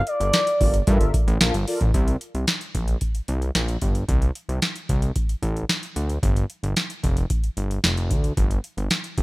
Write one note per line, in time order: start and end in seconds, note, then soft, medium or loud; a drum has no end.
0.07 1.10 D5 medium
0.07 closed hi-hat medium
0.20 0.31 G1 medium
0.20 0.38 F4 medium
0.20 0.38 A4 medium
0.20 0.38 A#4 medium
0.20 0.38 D5 medium
0.20 closed hi-hat medium
0.33 snare loud
0.33 closed hi-hat medium
0.47 closed hi-hat medium
0.60 0.83 G1 medium
0.60 0.72 F4 medium
0.60 0.72 A4 medium
0.60 0.73 A#4 medium
0.60 0.73 D5 medium
0.60 kick loud
0.60 open hi-hat medium
0.74 closed hi-hat medium
0.87 0.98 G2 loud
0.87 1.11 F4 medium
0.87 1.11 A4 medium
0.87 1.11 A#4 medium
0.87 1.12 E5 loud
0.87 kick loud
0.87 closed hi-hat medium
1.00 1.12 G1 medium
1.00 closed hi-hat medium
1.14 kick loud
1.14 closed hi-hat medium
1.27 1.39 A1 loud
1.27 closed hi-hat soft
1.40 1.52 A#1 medium
1.40 1.53 F4 medium
1.40 1.53 A4 medium
1.40 1.53 A#4 medium
1.40 1.53 F5 medium
1.40 snare loud
1.40 closed hi-hat medium
1.54 1.65 G1 medium
1.54 closed hi-hat medium
1.67 1.79 F4 medium
1.67 1.80 A4 medium
1.67 1.80 A#4 medium
1.67 1.80 D5 loud
1.67 open hi-hat medium
1.81 1.92 A1 loud
1.81 kick medium
1.81 closed hi-hat soft
1.94 2.17 C2 loud
1.94 kick loud
1.94 closed hi-hat medium
2.08 closed hi-hat medium
2.21 closed hi-hat medium
2.35 2.46 C2 medium
2.35 closed hi-hat soft
2.47 snare loud
2.47 closed hi-hat medium
2.61 closed hi-hat soft
2.75 2.97 A#1 medium
2.75 kick medium
2.75 closed hi-hat medium
2.88 closed hi-hat medium
3.01 kick medium
3.01 closed hi-hat medium
3.15 closed hi-hat medium
3.28 3.51 C2 medium
3.28 closed hi-hat medium
3.42 closed hi-hat soft
3.55 3.77 A#1 medium
3.55 snare medium
3.55 closed hi-hat medium
3.68 closed hi-hat soft
3.82 4.04 G1 medium
3.82 kick medium
3.82 closed hi-hat medium
3.95 closed hi-hat soft
4.09 4.31 C2 loud
4.09 kick loud
4.09 closed hi-hat medium
4.22 closed hi-hat soft
4.35 closed hi-hat medium
4.49 4.60 C2 medium
4.49 closed hi-hat soft
4.62 snare medium
4.62 closed hi-hat medium
4.76 closed hi-hat medium
4.89 5.11 C2 medium
4.89 kick medium
4.89 closed hi-hat medium
5.02 closed hi-hat soft
5.16 kick medium
5.16 closed hi-hat medium
5.29 closed hi-hat soft
5.42 5.65 A1 loud
5.42 kick medium
5.42 closed hi-hat medium
5.57 closed hi-hat soft
5.69 snare loud
5.69 closed hi-hat medium
5.83 closed hi-hat medium
5.96 6.18 D2 medium
5.96 closed hi-hat medium
6.09 closed hi-hat soft
6.23 6.45 G1 loud
6.23 kick loud
6.23 closed hi-hat medium
6.36 closed hi-hat soft
6.50 closed hi-hat medium
6.63 6.74 G1 medium
6.63 closed hi-hat soft
6.76 snare medium
6.76 closed hi-hat medium
6.90 closed hi-hat medium
7.03 7.26 F1 loud
7.03 kick medium
7.03 closed hi-hat medium
7.17 closed hi-hat soft
7.30 kick medium
7.30 closed hi-hat medium
7.44 closed hi-hat soft
7.57 7.79 G1 medium
7.57 closed hi-hat medium
7.71 closed hi-hat soft
7.84 8.12 F1 loud
7.84 snare loud
7.84 closed hi-hat medium
7.97 closed hi-hat soft
8.11 8.33 D2 medium
8.11 kick medium
8.11 closed hi-hat medium
8.24 closed hi-hat soft
8.37 8.60 G1 loud
8.37 kick loud
8.37 closed hi-hat medium
8.51 closed hi-hat soft
8.64 closed hi-hat medium
8.77 8.88 G1 medium
8.77 closed hi-hat soft
8.90 snare loud
8.90 closed hi-hat medium
9.04 closed hi-hat soft
9.18 9.23 G1 loud
9.18 kick loud
9.18 closed hi-hat medium